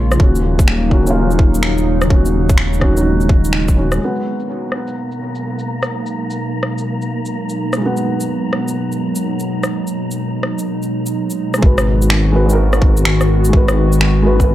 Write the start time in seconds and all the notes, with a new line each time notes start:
Already playing: A#1 C#3 G#3 A#3 F4 G#4 C#5
0.12 cross-stick, shaker
0.16 D#1 D#3 F#3 A#3 C#4 D#4
0.20 kick
0.24 F#4
0.35 shaker
0.59 kick, shaker
0.68 finger snap
0.89 D#3 C#4 F#4, kick
1.02 D#3
1.06 C#4, shaker
1.10 F4
1.31 shaker
1.39 kick
1.54 shaker
1.63 finger snap
1.78 shaker
2.02 cross-stick, shaker
2.06 D#3 G#3 C#4
2.10 F#4, kick
2.25 shaker
2.49 kick, shaker
2.58 finger snap
2.73 shaker
2.79 D#3 C#4 F#4, kick, cross-stick
2.93 D#3 C#4, shaker
3.01 F#4
3.21 shaker
3.29 kick
3.44 shaker
3.53 finger snap
3.68 kick, shaker
3.75 D#3 C#4
3.79 F#4
3.92 cross-stick, shaker
3.96 G#3 F#4
4.01 B2 F#3 G#3 A#3 B3 D#4 A#5
4.16 shaker
4.40 shaker
4.72 cross-stick
4.87 shaker
5.11 shaker
5.35 shaker
5.59 shaker
5.83 cross-stick, shaker
6.06 shaker
6.30 shaker
6.63 cross-stick
6.78 shaker
7.02 shaker
7.26 shaker
7.49 shaker
7.73 cross-stick, shaker
7.77 G#3
7.81 F#4
7.86 B3
7.97 shaker
8.20 shaker
8.53 cross-stick
8.68 shaker
8.92 shaker
9.15 shaker
9.39 shaker
9.64 cross-stick, shaker
9.87 shaker
10.11 shaker
10.43 cross-stick
10.59 shaker
10.82 shaker
11.06 shaker
11.30 shaker
11.54 cross-stick, shaker
11.58 G#3 F#4
11.62 G#1 D#3 G#3 B3 F#4 B4, kick
11.78 cross-stick, shaker
12.02 shaker
12.10 finger snap
12.32 G#3 F#4 B4
12.45 G#3
12.49 F#4 A#4, shaker
12.73 cross-stick, shaker
12.82 kick
12.97 shaker
13.05 finger snap
13.21 cross-stick, shaker
13.45 shaker
13.49 G#3 F#4
13.53 B4, kick
13.68 cross-stick, shaker
13.92 shaker
14.01 finger snap
14.22 G#3 F#4
14.26 B4
14.36 G#3
14.40 F#4 B4, kick, shaker